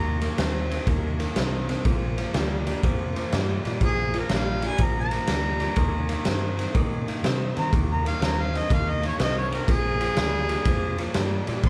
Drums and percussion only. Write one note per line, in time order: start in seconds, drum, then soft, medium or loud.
0.21 snare soft
0.21 ride medium
0.38 snare loud
0.38 ride loud
0.71 snare soft
0.71 ride medium
0.87 kick loud
0.87 ride medium
1.20 snare soft
1.20 ride medium
1.36 snare loud
1.36 ride medium
1.69 snare soft
1.69 ride medium
1.85 kick loud
1.85 ride medium
2.18 snare soft
2.18 ride medium
2.34 snare loud
2.34 ride medium
2.67 snare soft
2.67 ride medium
2.83 kick loud
2.83 ride medium
3.16 snare soft
3.16 ride medium
3.32 snare loud
3.32 ride medium
3.65 snare soft
3.65 ride medium
3.81 kick loud
3.81 ride medium
4.14 snare soft
4.14 ride medium
4.29 snare loud
4.29 ride medium
4.62 snare soft
4.62 ride medium
4.78 kick loud
4.78 ride medium
5.11 snare soft
5.11 ride medium
5.27 snare loud
5.27 ride loud
5.60 snare soft
5.60 ride medium
5.76 kick loud
5.76 ride medium
6.09 snare soft
6.09 ride medium
6.25 snare loud
6.25 ride medium
6.59 snare soft
6.59 ride medium
6.75 kick loud
6.75 ride medium
7.08 snare soft
7.08 ride medium
7.24 snare loud
7.24 ride medium
7.57 snare soft
7.57 ride medium
7.73 kick loud
7.73 ride medium
8.06 snare soft
8.06 ride medium
8.22 snare loud
8.22 ride medium
8.55 snare soft
8.55 ride medium
8.70 kick loud
8.70 ride medium
9.03 snare soft
9.03 ride medium
9.19 snare loud
9.19 ride medium
9.52 snare soft
9.52 ride medium
9.68 kick loud
9.68 snare soft
9.68 ride medium
10.01 snare soft
10.01 ride medium
10.17 snare loud
10.17 ride loud
10.49 snare soft
10.49 ride medium
10.65 kick loud
10.65 ride loud
10.98 snare soft
10.98 ride medium
11.14 snare loud
11.14 ride medium
11.47 snare soft
11.47 ride medium
11.63 kick loud
11.63 ride medium